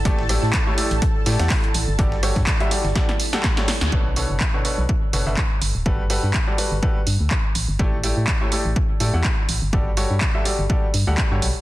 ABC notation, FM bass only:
X:1
M:4/4
L:1/16
Q:"Swing 16ths" 1/4=124
K:Edor
V:1 name="FM bass" clef=bass
A,,,3 A,, z3 A,,, z2 A,, E,, z2 A,,, G,,, | G,,,3 G,, z3 G,,, z6 z D,, | B,,,3 F,,, z3 B,,, z2 F,,, F,,, z2 G,,, D,,, | G,,,3 G,, z3 G,,, z2 G,, D,, z2 A,,, G,,, |
A,,,3 A,, z3 A,,, z2 A,, E,, z2 A,,, G,,, | G,,,3 G,, z3 G,,, z2 G,, D,, z G,, B,,, z |]